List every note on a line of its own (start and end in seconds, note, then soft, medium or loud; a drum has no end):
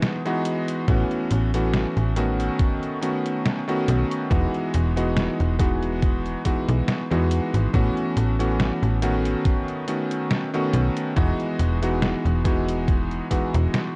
0.00 0.20 E3 medium
0.00 0.20 G#3 medium
0.00 0.20 B3 medium
0.00 0.20 D#4 medium
0.00 0.21 F#4 medium
0.00 snare loud
0.00 closed hi-hat medium
0.25 0.83 E3 medium
0.25 0.83 G#3 medium
0.25 0.84 B3 medium
0.25 0.84 D#4 medium
0.25 0.84 F#4 loud
0.25 closed hi-hat soft
0.45 closed hi-hat medium
0.68 closed hi-hat medium
0.88 1.04 A1 loud
0.88 1.49 E3 medium
0.88 1.49 A3 medium
0.88 1.49 B3 medium
0.88 1.49 C#4 medium
0.88 1.49 F#4 loud
0.88 kick loud
0.88 closed hi-hat soft
1.11 closed hi-hat soft
1.31 1.86 A1 medium
1.31 closed hi-hat medium
1.54 2.12 E3 medium
1.54 2.12 A3 medium
1.54 2.12 B3 medium
1.54 2.12 C#4 medium
1.54 2.13 F#4 medium
1.54 closed hi-hat medium
1.74 snare loud
1.74 closed hi-hat soft
1.97 2.50 A1 medium
1.97 closed hi-hat soft
2.16 2.97 D#3 medium
2.16 2.98 A3 medium
2.16 2.98 B3 medium
2.16 2.98 C#4 medium
2.16 2.98 F#4 loud
2.16 closed hi-hat medium
2.40 closed hi-hat medium
2.59 kick loud
2.59 closed hi-hat soft
2.83 closed hi-hat soft
3.01 3.62 D#3 medium
3.01 3.63 A3 medium
3.01 3.63 B3 medium
3.01 3.63 C#4 medium
3.01 3.63 F#4 medium
3.01 closed hi-hat medium
3.26 closed hi-hat medium
3.46 snare loud
3.46 closed hi-hat medium
3.68 4.26 D#3 medium
3.68 4.26 A3 medium
3.68 4.26 B3 medium
3.68 4.26 C#4 medium
3.68 4.27 F#4 loud
3.68 closed hi-hat soft
3.88 4.04 B1 medium
3.88 closed hi-hat medium
4.11 closed hi-hat soft
4.30 4.47 E1 loud
4.30 4.91 E3 medium
4.30 4.91 G#3 medium
4.30 4.91 B3 medium
4.30 4.92 D#4 medium
4.30 4.92 F#4 loud
4.30 kick loud
4.30 closed hi-hat soft
4.54 closed hi-hat soft
4.74 5.29 E1 medium
4.74 closed hi-hat medium
4.96 5.54 E3 medium
4.96 5.55 G#3 medium
4.96 5.55 B3 medium
4.96 5.55 D#4 medium
4.96 5.55 F#4 medium
4.96 closed hi-hat soft
5.17 snare loud
5.17 closed hi-hat soft
5.40 6.36 E1 medium
5.40 closed hi-hat soft
5.59 6.40 E3 medium
5.59 6.40 G#3 medium
5.59 6.41 B3 medium
5.59 6.41 D#4 medium
5.59 6.41 F#4 loud
5.59 kick loud
5.59 closed hi-hat medium
5.82 closed hi-hat soft
6.02 kick loud
6.02 closed hi-hat soft
6.26 closed hi-hat soft
6.45 7.05 E3 medium
6.45 7.06 G#3 medium
6.45 7.06 B3 medium
6.45 7.06 D#4 medium
6.45 7.06 F#4 medium
6.45 kick medium
6.45 closed hi-hat medium
6.68 6.82 B1 medium
6.68 closed hi-hat soft
6.88 snare loud
6.88 closed hi-hat soft
7.10 7.40 E2 loud
7.10 7.69 E3 medium
7.10 7.69 G#3 medium
7.10 7.69 B3 medium
7.10 7.69 D#4 medium
7.10 7.70 F#4 loud
7.10 closed hi-hat soft
7.31 closed hi-hat medium
7.54 7.68 G#1 medium
7.54 closed hi-hat soft
7.73 7.90 A1 loud
7.73 8.34 E3 medium
7.73 8.34 A3 medium
7.73 8.34 B3 medium
7.73 8.35 C#4 medium
7.73 8.35 F#4 loud
7.73 kick loud
7.73 closed hi-hat soft
7.97 closed hi-hat soft
8.17 8.71 A1 medium
8.17 closed hi-hat medium
8.39 8.97 E3 medium
8.39 8.97 A3 medium
8.39 8.98 B3 medium
8.39 8.98 C#4 medium
8.39 8.98 F#4 medium
8.39 closed hi-hat soft
8.60 snare loud
8.60 closed hi-hat soft
8.83 9.36 A1 medium
8.83 closed hi-hat soft
9.02 9.83 D#3 medium
9.02 9.83 A3 medium
9.02 9.84 B3 medium
9.02 9.84 C#4 medium
9.02 9.84 F#4 loud
9.02 closed hi-hat medium
9.25 closed hi-hat soft
9.45 kick loud
9.45 closed hi-hat soft
9.68 closed hi-hat soft
9.87 10.48 D#3 medium
9.87 10.49 A3 medium
9.87 10.49 B3 medium
9.87 10.49 C#4 medium
9.87 10.49 F#4 medium
9.87 closed hi-hat medium
10.11 closed hi-hat soft
10.31 snare loud
10.31 closed hi-hat soft
10.54 11.12 D#3 medium
10.54 11.12 A3 medium
10.54 11.12 B3 medium
10.54 11.12 C#4 medium
10.54 11.12 F#4 loud
10.54 closed hi-hat soft
10.73 10.90 B1 medium
10.73 closed hi-hat medium
10.97 closed hi-hat soft
11.16 11.33 E1 loud
11.16 11.77 E3 medium
11.16 11.77 G#3 medium
11.16 11.77 B3 medium
11.16 11.77 D#4 medium
11.16 11.78 F#4 loud
11.16 kick loud
11.16 closed hi-hat soft
11.40 closed hi-hat soft
11.59 12.14 E1 medium
11.59 closed hi-hat medium
11.82 12.40 E3 medium
11.82 12.40 G#3 medium
11.82 12.41 B3 medium
11.82 12.41 D#4 medium
11.82 12.41 F#4 medium
11.82 closed hi-hat soft
12.02 snare loud
12.02 closed hi-hat soft
12.25 13.21 E1 medium
12.25 closed hi-hat soft
12.44 13.26 E3 medium
12.44 13.26 G#3 medium
12.44 13.26 B3 medium
12.44 13.26 D#4 medium
12.44 13.27 F#4 loud
12.44 kick loud
12.44 closed hi-hat medium
12.69 closed hi-hat soft
12.88 kick loud
12.88 closed hi-hat soft
13.11 closed hi-hat soft
13.30 13.91 E3 medium
13.30 13.91 G#3 medium
13.30 13.92 B3 medium
13.30 13.92 D#4 medium
13.30 13.92 F#4 medium
13.30 kick medium
13.30 closed hi-hat medium
13.54 13.68 E1 loud
13.54 closed hi-hat soft
13.74 snare loud
13.74 closed hi-hat soft